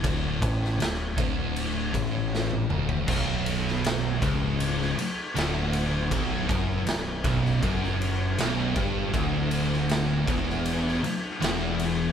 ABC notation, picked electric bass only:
X:1
M:4/4
L:1/8
Q:1/4=79
K:Bm
V:1 name="Picked electric bass" clef=bass
D,,, A,,, D,,, D,,,2 A,,,2 D,,, | B,,,,3 C,,,2 z D,,,2 | B,,,, F,,, B,,,, B,,,, F,,,2 B,,,, G,,, | D,,,3 E,,,2 z E,,,2 |]